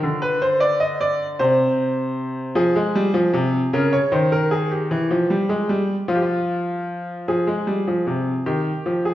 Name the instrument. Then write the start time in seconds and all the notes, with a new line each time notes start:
grand piano
Already playing: A#4
0.03 D3
0.22 B4
0.42 C5
0.60 D5
0.80 D#5
1.01 D5
1.39 C3 C5
2.55 F3 G#4
2.76 G#3
2.95 G3
3.14 F3
3.33 C3
3.73 C#3 A#4
3.93 C#5
4.12 D#3 C5
4.32 A#4
4.51 G#4
4.71 G4
4.91 E3
5.11 F3
5.30 G3
5.49 G#3
5.69 G3
6.08 F3 F4
6.15 G4
6.22 F4
7.28 F3 G#4
7.47 G#3
7.67 G3
7.87 F3
8.07 C3
8.46 D#3 G4
8.86 F3
9.05 G#4